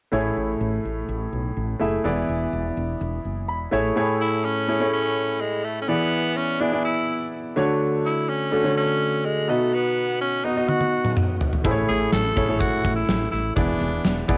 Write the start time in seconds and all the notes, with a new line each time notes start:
0.12 A1 A2 A3 E4 G#4 C#5
0.36 A1
0.61 A1
0.85 A1
1.09 A1
1.33 B1
1.57 A1
1.80 F#1 A3 E4 G#4 E5
2.04 E1 E3 B3 E4 G#4 D5
2.29 E1
2.53 E1
2.77 E1
3.01 E1
3.25 F#1
3.48 E1 B5
3.71 A1 A3 E4 G#4 C#5 E5
3.96 A2 A3 E4 G#4 C#5
4.21 E4
4.45 C#4
4.68 A3 E4 G#4 C#5
4.80 A3 E4 G#4 C#5
4.93 C#4
5.41 G#3
5.64 A3
5.82 C#4
5.88 E3 B3 E4 G#4 D5
6.37 C#4
6.60 B3 D4 E4 G#4 D5
6.72 B3 E4 G#4 D5
6.85 E4
7.56 D3 A3 D4 F#4 C#5
8.06 E4
8.29 C#4
8.52 A3 D4 F#4 A4
8.64 D3 A3 F#4 C#5
8.77 C#4
9.25 G#3
9.48 B2 A3 B3 D#4 F#4 D#5
9.74 B3
10.21 C#4
10.44 B3 D#4 F#4 D#5
10.56 B3 D#4 F#4 D#5
10.68 F#4, high tom
10.80 high tom
11.05 mid tom
11.17 mid tom
11.41 floor tom
11.53 floor tom
11.64 A1 A2 A3 E4 G#4 C5, kick, closed hi-hat
11.71 C#5
11.88 A1 G#4, closed hi-hat
12.12 A1 A4, snare, closed hi-hat
12.36 A1 A3 E4 G#4 C#5, kick, closed hi-hat
12.48 A3 E4 G#4 C#5
12.60 F#4, kick, closed hi-hat
12.84 A1, kick, closed hi-hat
12.95 E4
13.09 A1, snare, closed hi-hat
13.31 A1 E4, closed hi-hat
13.56 E1 E3 B3 D4 E4 G#4 D5, kick, closed hi-hat
13.80 E1, closed hi-hat
14.05 E1, snare, closed hi-hat
14.28 E1 B3 E4 G#4 D5, kick, closed hi-hat